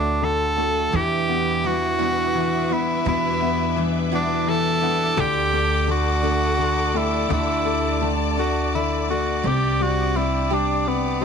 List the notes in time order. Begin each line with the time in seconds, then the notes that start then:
Already playing: D2 A2 D3 A3 D4 F#4
0.22 D3 A4
0.56 A3 D4 F#4
0.92 E2 B2 E3 G3 D4 E4 G4 B4 E5 D6
1.29 B3
1.63 E3 G3 D4 E4 F#4
1.99 E2 B2 E3 G3 B3 D4 E4
2.35 E3
2.69 E3 G3 B3 D4 E4
3.05 E2 B2 E3 G3 D4 E4
3.42 B3
3.76 E3 G3 D4 E4
4.11 E2 B2 E3 G3 B3 D4 E4
4.47 E3 A4
4.82 E3 G3 B3 D4 E4
5.17 D2 D3 A3 D4 G4 A4 D5
5.21 G4
5.53 A3
5.87 D3 A3 D4 F#4
6.23 D3 A3 D4
6.58 D3
6.94 A3 D4 E4 G4
7.29 D2 D3 A3 D4 G4 A5
7.33 E4
7.65 A3
8.00 D3 A3 D4 G4
8.37 D3 A3 D4 F#4
8.75 D3 E4
9.08 A3 D4 F#4
9.43 C2 C3 G3 C4 D4 G4
9.81 G3 F#4
10.15 C3 G3 C4 D4 E4 G4
10.50 C3 G3 D4 G4
10.86 C3 B3
11.21 G3 D4 G4